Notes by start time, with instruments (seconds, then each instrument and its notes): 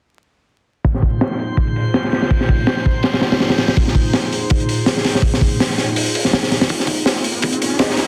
0.84 ambient pad D#4 F4 G#4 C5, synth texture C5 C6, kick, open hi-hat
0.94 snare
1.02 kick, open hi-hat
1.21 snare, open hi-hat
1.31 snare
1.39 open hi-hat
1.57 kick, open hi-hat
1.67 closed hi-hat
1.76 open hi-hat
1.94 snare, open hi-hat
2.04 snare
2.12 snare, open hi-hat
2.22 snare
2.31 kick, open hi-hat
2.41 snare
2.49 kick, open hi-hat
2.67 snare, open hi-hat
2.77 snare
2.86 kick, open hi-hat
3.03 snare, open hi-hat
3.14 snare, open hi-hat
3.21 snare, open hi-hat
3.32 snare, open hi-hat
3.40 snare, open hi-hat
3.50 snare, open hi-hat
3.58 snare, open hi-hat
3.68 snare, open hi-hat
3.77 kick, open hi-hat
3.88 snare
3.95 kick, open hi-hat
4.13 snare, open hi-hat
4.23 snare
4.32 open hi-hat
4.50 kick, open hi-hat
4.60 closed hi-hat
4.69 open hi-hat
4.86 snare, open hi-hat
4.97 snare
5.05 snare, open hi-hat
5.15 snare
5.22 kick, open hi-hat
5.34 snare
5.41 kick, open hi-hat
5.60 snare, open hi-hat
5.70 snare
5.78 snare, open hi-hat
5.96 open hi-hat
6.15 open hi-hat
6.25 snare
6.33 snare, open hi-hat
6.43 snare
6.52 snare, open hi-hat
6.61 snare, open hi-hat
6.69 808-style bass F1, ambient pad C4 D#4 F4 G#4, kick, open hi-hat, riser
6.80 snare
6.87 kick, open hi-hat
7.06 snare, open hi-hat
7.16 snare
7.24 open hi-hat
7.42 kick, open hi-hat
7.52 closed hi-hat
7.62 open hi-hat
7.79 808-style bass C2, grand piano C4 F4 G#4 D#5, snare, open hi-hat
7.90 snare
7.97 snare, open hi-hat